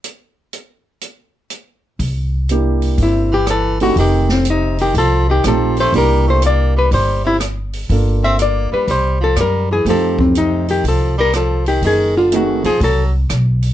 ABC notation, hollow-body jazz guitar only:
X:1
M:4/4
L:1/8
Q:"Swing" 1/4=122
K:F
V:1 name="Hollow-body jazz guitar"
z8 | z4 E G A ^F | G C _E G A G A c | B c d =B c E z2 |
z e d =B c A _B _A | A C _E G A B A G | _A F ^F A =A z3 |]